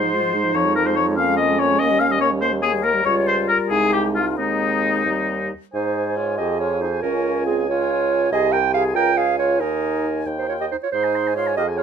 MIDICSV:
0, 0, Header, 1, 6, 480
1, 0, Start_track
1, 0, Key_signature, -4, "major"
1, 0, Tempo, 416378
1, 626, Time_signature, 6, 3, 24, 8
1, 3517, Tempo, 447761
1, 6397, Tempo, 431344
1, 13175, End_track
2, 0, Start_track
2, 0, Title_t, "Oboe"
2, 0, Program_c, 0, 68
2, 0, Note_on_c, 0, 72, 79
2, 636, Note_on_c, 0, 73, 85
2, 653, Note_off_c, 0, 72, 0
2, 860, Note_off_c, 0, 73, 0
2, 867, Note_on_c, 0, 70, 80
2, 995, Note_on_c, 0, 72, 61
2, 1012, Note_off_c, 0, 70, 0
2, 1102, Note_off_c, 0, 72, 0
2, 1109, Note_on_c, 0, 73, 81
2, 1216, Note_off_c, 0, 73, 0
2, 1345, Note_on_c, 0, 77, 81
2, 1569, Note_off_c, 0, 77, 0
2, 1576, Note_on_c, 0, 75, 82
2, 1830, Note_on_c, 0, 73, 81
2, 1847, Note_off_c, 0, 75, 0
2, 2066, Note_on_c, 0, 75, 86
2, 2083, Note_off_c, 0, 73, 0
2, 2301, Note_on_c, 0, 77, 84
2, 2319, Note_off_c, 0, 75, 0
2, 2440, Note_on_c, 0, 75, 81
2, 2458, Note_off_c, 0, 77, 0
2, 2535, Note_off_c, 0, 75, 0
2, 2542, Note_on_c, 0, 73, 81
2, 2651, Note_off_c, 0, 73, 0
2, 2779, Note_on_c, 0, 72, 80
2, 2889, Note_off_c, 0, 72, 0
2, 3023, Note_on_c, 0, 68, 76
2, 3133, Note_off_c, 0, 68, 0
2, 3263, Note_on_c, 0, 70, 80
2, 3508, Note_off_c, 0, 70, 0
2, 3520, Note_on_c, 0, 73, 86
2, 3624, Note_off_c, 0, 73, 0
2, 3757, Note_on_c, 0, 72, 76
2, 3859, Note_off_c, 0, 72, 0
2, 3981, Note_on_c, 0, 70, 80
2, 4086, Note_off_c, 0, 70, 0
2, 4211, Note_on_c, 0, 68, 78
2, 4444, Note_off_c, 0, 68, 0
2, 4456, Note_on_c, 0, 67, 65
2, 4563, Note_off_c, 0, 67, 0
2, 4697, Note_on_c, 0, 65, 60
2, 4806, Note_off_c, 0, 65, 0
2, 4939, Note_on_c, 0, 63, 66
2, 6136, Note_off_c, 0, 63, 0
2, 6396, Note_on_c, 0, 80, 42
2, 6517, Note_off_c, 0, 80, 0
2, 6517, Note_on_c, 0, 80, 36
2, 6638, Note_off_c, 0, 80, 0
2, 6638, Note_on_c, 0, 80, 38
2, 6757, Note_off_c, 0, 80, 0
2, 6757, Note_on_c, 0, 80, 38
2, 6875, Note_off_c, 0, 80, 0
2, 6875, Note_on_c, 0, 80, 37
2, 6995, Note_off_c, 0, 80, 0
2, 6995, Note_on_c, 0, 80, 36
2, 7093, Note_off_c, 0, 80, 0
2, 7100, Note_on_c, 0, 80, 39
2, 7234, Note_off_c, 0, 80, 0
2, 7234, Note_on_c, 0, 80, 36
2, 7361, Note_off_c, 0, 80, 0
2, 7361, Note_on_c, 0, 80, 38
2, 7478, Note_off_c, 0, 80, 0
2, 7478, Note_on_c, 0, 80, 39
2, 7602, Note_off_c, 0, 80, 0
2, 7602, Note_on_c, 0, 80, 37
2, 7712, Note_off_c, 0, 80, 0
2, 7712, Note_on_c, 0, 80, 39
2, 7831, Note_off_c, 0, 80, 0
2, 7839, Note_on_c, 0, 80, 42
2, 7961, Note_off_c, 0, 80, 0
2, 7961, Note_on_c, 0, 80, 40
2, 8079, Note_off_c, 0, 80, 0
2, 8079, Note_on_c, 0, 80, 43
2, 8197, Note_off_c, 0, 80, 0
2, 8197, Note_on_c, 0, 80, 42
2, 8318, Note_off_c, 0, 80, 0
2, 8318, Note_on_c, 0, 80, 42
2, 8453, Note_off_c, 0, 80, 0
2, 8453, Note_on_c, 0, 80, 44
2, 8576, Note_off_c, 0, 80, 0
2, 8576, Note_on_c, 0, 80, 46
2, 8689, Note_off_c, 0, 80, 0
2, 8689, Note_on_c, 0, 80, 43
2, 8821, Note_off_c, 0, 80, 0
2, 8821, Note_on_c, 0, 80, 47
2, 8934, Note_off_c, 0, 80, 0
2, 8934, Note_on_c, 0, 80, 44
2, 9059, Note_off_c, 0, 80, 0
2, 9059, Note_on_c, 0, 80, 48
2, 9172, Note_off_c, 0, 80, 0
2, 9172, Note_on_c, 0, 80, 46
2, 9280, Note_off_c, 0, 80, 0
2, 9288, Note_on_c, 0, 80, 53
2, 9940, Note_off_c, 0, 80, 0
2, 9983, Note_on_c, 0, 80, 54
2, 10691, Note_off_c, 0, 80, 0
2, 10713, Note_on_c, 0, 80, 45
2, 11434, Note_on_c, 0, 79, 40
2, 11451, Note_off_c, 0, 80, 0
2, 11934, Note_off_c, 0, 79, 0
2, 12177, Note_on_c, 0, 84, 44
2, 12297, Note_on_c, 0, 80, 39
2, 12314, Note_off_c, 0, 84, 0
2, 12425, Note_on_c, 0, 84, 40
2, 12442, Note_off_c, 0, 80, 0
2, 12559, Note_on_c, 0, 80, 39
2, 12575, Note_off_c, 0, 84, 0
2, 12653, Note_off_c, 0, 80, 0
2, 12660, Note_on_c, 0, 84, 40
2, 12781, Note_on_c, 0, 80, 41
2, 12797, Note_off_c, 0, 84, 0
2, 12893, Note_off_c, 0, 80, 0
2, 12899, Note_on_c, 0, 77, 43
2, 13011, Note_on_c, 0, 80, 40
2, 13028, Note_off_c, 0, 77, 0
2, 13121, Note_on_c, 0, 77, 40
2, 13138, Note_off_c, 0, 80, 0
2, 13175, Note_off_c, 0, 77, 0
2, 13175, End_track
3, 0, Start_track
3, 0, Title_t, "Clarinet"
3, 0, Program_c, 1, 71
3, 0, Note_on_c, 1, 63, 58
3, 166, Note_on_c, 1, 65, 58
3, 183, Note_off_c, 1, 63, 0
3, 392, Note_off_c, 1, 65, 0
3, 399, Note_on_c, 1, 63, 62
3, 1349, Note_on_c, 1, 61, 73
3, 1366, Note_off_c, 1, 63, 0
3, 3195, Note_off_c, 1, 61, 0
3, 3513, Note_on_c, 1, 65, 78
3, 4224, Note_on_c, 1, 63, 60
3, 4240, Note_off_c, 1, 65, 0
3, 4935, Note_off_c, 1, 63, 0
3, 4941, Note_on_c, 1, 60, 60
3, 6018, Note_off_c, 1, 60, 0
3, 6395, Note_on_c, 1, 72, 58
3, 6869, Note_on_c, 1, 73, 55
3, 6885, Note_off_c, 1, 72, 0
3, 7101, Note_off_c, 1, 73, 0
3, 7108, Note_on_c, 1, 75, 56
3, 7346, Note_off_c, 1, 75, 0
3, 7353, Note_on_c, 1, 73, 59
3, 7591, Note_on_c, 1, 72, 55
3, 7608, Note_off_c, 1, 73, 0
3, 7817, Note_off_c, 1, 72, 0
3, 7824, Note_on_c, 1, 70, 66
3, 8307, Note_off_c, 1, 70, 0
3, 8311, Note_on_c, 1, 68, 61
3, 8556, Note_off_c, 1, 68, 0
3, 8570, Note_on_c, 1, 73, 70
3, 9259, Note_off_c, 1, 73, 0
3, 9272, Note_on_c, 1, 75, 77
3, 9498, Note_on_c, 1, 79, 75
3, 9515, Note_off_c, 1, 75, 0
3, 9732, Note_off_c, 1, 79, 0
3, 9739, Note_on_c, 1, 77, 74
3, 9845, Note_off_c, 1, 77, 0
3, 9978, Note_on_c, 1, 79, 74
3, 10219, Note_on_c, 1, 77, 74
3, 10235, Note_off_c, 1, 79, 0
3, 10450, Note_off_c, 1, 77, 0
3, 10456, Note_on_c, 1, 73, 61
3, 10693, Note_on_c, 1, 70, 69
3, 10710, Note_off_c, 1, 73, 0
3, 11436, Note_off_c, 1, 70, 0
3, 11566, Note_on_c, 1, 72, 54
3, 11680, Note_off_c, 1, 72, 0
3, 11684, Note_on_c, 1, 73, 55
3, 11741, Note_off_c, 1, 73, 0
3, 11816, Note_on_c, 1, 75, 53
3, 11871, Note_off_c, 1, 75, 0
3, 11935, Note_on_c, 1, 72, 55
3, 11991, Note_off_c, 1, 72, 0
3, 12060, Note_on_c, 1, 73, 54
3, 12116, Note_off_c, 1, 73, 0
3, 12165, Note_on_c, 1, 72, 70
3, 12639, Note_off_c, 1, 72, 0
3, 12646, Note_on_c, 1, 73, 62
3, 12878, Note_off_c, 1, 73, 0
3, 12884, Note_on_c, 1, 75, 67
3, 12989, Note_off_c, 1, 75, 0
3, 13107, Note_on_c, 1, 73, 67
3, 13175, Note_off_c, 1, 73, 0
3, 13175, End_track
4, 0, Start_track
4, 0, Title_t, "Flute"
4, 0, Program_c, 2, 73
4, 0, Note_on_c, 2, 72, 71
4, 629, Note_on_c, 2, 73, 74
4, 646, Note_off_c, 2, 72, 0
4, 865, Note_off_c, 2, 73, 0
4, 871, Note_on_c, 2, 70, 60
4, 985, Note_off_c, 2, 70, 0
4, 997, Note_on_c, 2, 72, 50
4, 1108, Note_off_c, 2, 72, 0
4, 1114, Note_on_c, 2, 73, 61
4, 1345, Note_off_c, 2, 73, 0
4, 1359, Note_on_c, 2, 77, 81
4, 1588, Note_off_c, 2, 77, 0
4, 1606, Note_on_c, 2, 75, 68
4, 1832, Note_off_c, 2, 75, 0
4, 1848, Note_on_c, 2, 73, 66
4, 2071, Note_off_c, 2, 73, 0
4, 2078, Note_on_c, 2, 75, 82
4, 2315, Note_on_c, 2, 77, 70
4, 2332, Note_off_c, 2, 75, 0
4, 2434, Note_on_c, 2, 75, 63
4, 2451, Note_off_c, 2, 77, 0
4, 2538, Note_off_c, 2, 75, 0
4, 2545, Note_on_c, 2, 73, 68
4, 2614, Note_off_c, 2, 73, 0
4, 2789, Note_on_c, 2, 72, 74
4, 2858, Note_off_c, 2, 72, 0
4, 3026, Note_on_c, 2, 68, 70
4, 3273, Note_on_c, 2, 70, 68
4, 3291, Note_off_c, 2, 68, 0
4, 3514, Note_on_c, 2, 73, 79
4, 3530, Note_off_c, 2, 70, 0
4, 3749, Note_on_c, 2, 72, 68
4, 3765, Note_off_c, 2, 73, 0
4, 3987, Note_on_c, 2, 70, 65
4, 4003, Note_off_c, 2, 72, 0
4, 4218, Note_on_c, 2, 68, 75
4, 4234, Note_off_c, 2, 70, 0
4, 4452, Note_on_c, 2, 67, 65
4, 4468, Note_off_c, 2, 68, 0
4, 4677, Note_off_c, 2, 67, 0
4, 4684, Note_on_c, 2, 65, 54
4, 4931, Note_on_c, 2, 63, 66
4, 4947, Note_off_c, 2, 65, 0
4, 6157, Note_off_c, 2, 63, 0
4, 6394, Note_on_c, 2, 63, 49
4, 6877, Note_on_c, 2, 65, 44
4, 6894, Note_off_c, 2, 63, 0
4, 7111, Note_on_c, 2, 67, 51
4, 7128, Note_off_c, 2, 65, 0
4, 7347, Note_off_c, 2, 67, 0
4, 7354, Note_on_c, 2, 65, 50
4, 7582, Note_off_c, 2, 65, 0
4, 7588, Note_on_c, 2, 63, 47
4, 7655, Note_off_c, 2, 63, 0
4, 7832, Note_on_c, 2, 61, 53
4, 8319, Note_on_c, 2, 60, 47
4, 8335, Note_off_c, 2, 61, 0
4, 8565, Note_off_c, 2, 60, 0
4, 8571, Note_on_c, 2, 65, 62
4, 9260, Note_off_c, 2, 65, 0
4, 9267, Note_on_c, 2, 68, 69
4, 9484, Note_off_c, 2, 68, 0
4, 9491, Note_on_c, 2, 70, 64
4, 9557, Note_off_c, 2, 70, 0
4, 9734, Note_on_c, 2, 68, 66
4, 9972, Note_on_c, 2, 70, 77
4, 9988, Note_off_c, 2, 68, 0
4, 10203, Note_off_c, 2, 70, 0
4, 10210, Note_on_c, 2, 68, 60
4, 10450, Note_off_c, 2, 68, 0
4, 10456, Note_on_c, 2, 65, 55
4, 10707, Note_on_c, 2, 63, 57
4, 10723, Note_off_c, 2, 65, 0
4, 11217, Note_off_c, 2, 63, 0
4, 11558, Note_on_c, 2, 63, 50
4, 11675, Note_off_c, 2, 63, 0
4, 11684, Note_on_c, 2, 65, 46
4, 11797, Note_off_c, 2, 65, 0
4, 11804, Note_on_c, 2, 67, 43
4, 11862, Note_off_c, 2, 67, 0
4, 11930, Note_on_c, 2, 63, 49
4, 11988, Note_off_c, 2, 63, 0
4, 12061, Note_on_c, 2, 65, 42
4, 12116, Note_off_c, 2, 65, 0
4, 12174, Note_on_c, 2, 63, 56
4, 12648, Note_off_c, 2, 63, 0
4, 12657, Note_on_c, 2, 65, 50
4, 12873, Note_off_c, 2, 65, 0
4, 12880, Note_on_c, 2, 67, 57
4, 12947, Note_off_c, 2, 67, 0
4, 13117, Note_on_c, 2, 65, 53
4, 13175, Note_off_c, 2, 65, 0
4, 13175, End_track
5, 0, Start_track
5, 0, Title_t, "French horn"
5, 0, Program_c, 3, 60
5, 33, Note_on_c, 3, 53, 40
5, 136, Note_off_c, 3, 53, 0
5, 143, Note_on_c, 3, 56, 44
5, 264, Note_on_c, 3, 53, 44
5, 282, Note_off_c, 3, 56, 0
5, 381, Note_on_c, 3, 56, 49
5, 398, Note_off_c, 3, 53, 0
5, 507, Note_on_c, 3, 53, 45
5, 524, Note_off_c, 3, 56, 0
5, 625, Note_off_c, 3, 53, 0
5, 631, Note_on_c, 3, 53, 49
5, 757, Note_on_c, 3, 56, 43
5, 775, Note_off_c, 3, 53, 0
5, 881, Note_on_c, 3, 53, 43
5, 898, Note_off_c, 3, 56, 0
5, 992, Note_on_c, 3, 56, 47
5, 1010, Note_off_c, 3, 53, 0
5, 1108, Note_off_c, 3, 56, 0
5, 1115, Note_on_c, 3, 53, 48
5, 1238, Note_on_c, 3, 56, 45
5, 1256, Note_off_c, 3, 53, 0
5, 1352, Note_off_c, 3, 56, 0
5, 1358, Note_on_c, 3, 58, 50
5, 1485, Note_on_c, 3, 56, 44
5, 1503, Note_off_c, 3, 58, 0
5, 1605, Note_on_c, 3, 58, 43
5, 1622, Note_off_c, 3, 56, 0
5, 1717, Note_on_c, 3, 56, 46
5, 1734, Note_off_c, 3, 58, 0
5, 1832, Note_off_c, 3, 56, 0
5, 1841, Note_on_c, 3, 58, 49
5, 1957, Note_on_c, 3, 56, 46
5, 1974, Note_off_c, 3, 58, 0
5, 2072, Note_off_c, 3, 56, 0
5, 2087, Note_on_c, 3, 58, 54
5, 2197, Note_on_c, 3, 55, 45
5, 2214, Note_off_c, 3, 58, 0
5, 2312, Note_on_c, 3, 58, 45
5, 2329, Note_off_c, 3, 55, 0
5, 2430, Note_on_c, 3, 55, 52
5, 2448, Note_off_c, 3, 58, 0
5, 2537, Note_off_c, 3, 55, 0
5, 2544, Note_on_c, 3, 58, 52
5, 2665, Note_on_c, 3, 55, 50
5, 2682, Note_off_c, 3, 58, 0
5, 2784, Note_on_c, 3, 58, 53
5, 2801, Note_off_c, 3, 55, 0
5, 2907, Note_on_c, 3, 55, 43
5, 2924, Note_off_c, 3, 58, 0
5, 3024, Note_off_c, 3, 55, 0
5, 3031, Note_on_c, 3, 58, 49
5, 3149, Note_on_c, 3, 55, 47
5, 3166, Note_off_c, 3, 58, 0
5, 3275, Note_on_c, 3, 58, 48
5, 3292, Note_off_c, 3, 55, 0
5, 3389, Note_on_c, 3, 55, 49
5, 3406, Note_off_c, 3, 58, 0
5, 3496, Note_off_c, 3, 55, 0
5, 3503, Note_on_c, 3, 55, 54
5, 4217, Note_on_c, 3, 56, 59
5, 4233, Note_off_c, 3, 55, 0
5, 4755, Note_off_c, 3, 56, 0
5, 4937, Note_on_c, 3, 56, 48
5, 5655, Note_off_c, 3, 56, 0
5, 5669, Note_on_c, 3, 55, 50
5, 6149, Note_off_c, 3, 55, 0
5, 7119, Note_on_c, 3, 68, 49
5, 7788, Note_off_c, 3, 68, 0
5, 7835, Note_on_c, 3, 65, 52
5, 8543, Note_off_c, 3, 65, 0
5, 8550, Note_on_c, 3, 65, 54
5, 9264, Note_on_c, 3, 67, 63
5, 9281, Note_off_c, 3, 65, 0
5, 9975, Note_on_c, 3, 65, 55
5, 9992, Note_off_c, 3, 67, 0
5, 10692, Note_on_c, 3, 63, 46
5, 10709, Note_off_c, 3, 65, 0
5, 11807, Note_off_c, 3, 63, 0
5, 12884, Note_on_c, 3, 68, 53
5, 13175, Note_off_c, 3, 68, 0
5, 13175, End_track
6, 0, Start_track
6, 0, Title_t, "Bassoon"
6, 0, Program_c, 4, 70
6, 0, Note_on_c, 4, 44, 56
6, 599, Note_off_c, 4, 44, 0
6, 626, Note_on_c, 4, 41, 65
6, 2039, Note_off_c, 4, 41, 0
6, 2066, Note_on_c, 4, 39, 67
6, 3486, Note_off_c, 4, 39, 0
6, 3515, Note_on_c, 4, 37, 67
6, 4030, Note_off_c, 4, 37, 0
6, 4212, Note_on_c, 4, 36, 54
6, 4932, Note_on_c, 4, 39, 57
6, 4948, Note_off_c, 4, 36, 0
6, 5661, Note_off_c, 4, 39, 0
6, 5668, Note_on_c, 4, 39, 46
6, 6148, Note_off_c, 4, 39, 0
6, 6394, Note_on_c, 4, 44, 47
6, 7122, Note_on_c, 4, 41, 44
6, 7139, Note_off_c, 4, 44, 0
6, 7824, Note_off_c, 4, 41, 0
6, 7831, Note_on_c, 4, 37, 49
6, 9242, Note_off_c, 4, 37, 0
6, 9261, Note_on_c, 4, 36, 57
6, 9971, Note_on_c, 4, 37, 54
6, 9988, Note_off_c, 4, 36, 0
6, 10695, Note_on_c, 4, 39, 51
6, 10712, Note_off_c, 4, 37, 0
6, 11425, Note_off_c, 4, 39, 0
6, 11432, Note_on_c, 4, 39, 44
6, 11922, Note_off_c, 4, 39, 0
6, 12181, Note_on_c, 4, 44, 50
6, 12886, Note_on_c, 4, 41, 47
6, 12902, Note_off_c, 4, 44, 0
6, 13175, Note_off_c, 4, 41, 0
6, 13175, End_track
0, 0, End_of_file